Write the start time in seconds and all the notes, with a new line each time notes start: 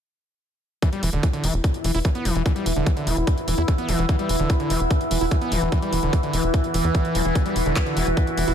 0.82 E3 E4, kick, closed hi-hat
0.93 G3, closed hi-hat
1.03 E1 E3, open hi-hat
1.13 E1 D3 B4 E6, closed hi-hat
1.21 E3 F#5, kick, closed hi-hat
1.33 D3, closed hi-hat
1.44 E1 E3, open hi-hat
1.54 E1, closed hi-hat
1.64 kick, closed hi-hat
1.74 closed hi-hat
1.84 E1 E3, open hi-hat
1.95 E1 E4, open hi-hat
2.05 E3, kick, closed hi-hat
2.15 B3, closed hi-hat
2.25 E1 E3, open hi-hat
2.35 E1 E3, closed hi-hat
2.46 E3, kick, closed hi-hat
2.56 G3, closed hi-hat
2.66 E1 E3, open hi-hat
2.76 E1 D3, closed hi-hat
2.86 E3, kick, closed hi-hat
2.97 D3, closed hi-hat
3.07 E1 E3, open hi-hat
3.17 E1, closed hi-hat
3.27 kick, closed hi-hat
3.38 closed hi-hat
3.48 E1 E3, open hi-hat
3.58 E2 E4, closed hi-hat
3.68 E3, kick, closed hi-hat
3.78 B3, closed hi-hat
3.89 E1 E3, open hi-hat
3.99 E1 E3, closed hi-hat
4.09 E3, kick, closed hi-hat
4.19 G3, closed hi-hat
4.29 E1 E3, open hi-hat
4.40 E1 D3, closed hi-hat
4.50 E3, kick, closed hi-hat
4.60 D3, closed hi-hat
4.70 E1 E3, open hi-hat
4.80 E1, closed hi-hat
4.91 kick, closed hi-hat
5.01 closed hi-hat
5.11 E1 E3, open hi-hat
5.21 E1 E4, open hi-hat
5.31 E3, kick, closed hi-hat
5.42 B3, closed hi-hat
5.52 E1 E3, open hi-hat
5.62 E1 E3, closed hi-hat
5.72 E3, kick, closed hi-hat
5.82 G3, closed hi-hat
5.93 E1 E3, open hi-hat
6.03 E1 D3, closed hi-hat
6.13 E3, kick, closed hi-hat
6.23 D3, closed hi-hat
6.33 E1 E3, open hi-hat
6.44 E1, closed hi-hat
6.54 kick, closed hi-hat
6.64 closed hi-hat
6.74 E1 E3, open hi-hat
6.84 E2 E3, closed hi-hat
6.95 E3, kick, closed hi-hat
7.05 E3, closed hi-hat
7.15 E1 F#3, open hi-hat
7.25 E1 E3, closed hi-hat
7.35 E3 F#4, kick, closed hi-hat
7.46 G3, closed hi-hat
7.56 E1 E3, open hi-hat
7.66 E1 D3, closed hi-hat
7.76 E3, kick, clap, closed hi-hat
7.86 D3, closed hi-hat
7.97 E1 E3, open hi-hat
8.07 E1, closed hi-hat
8.17 kick, closed hi-hat
8.27 closed hi-hat
8.38 E1 E3, open hi-hat
8.48 E1 E4, open hi-hat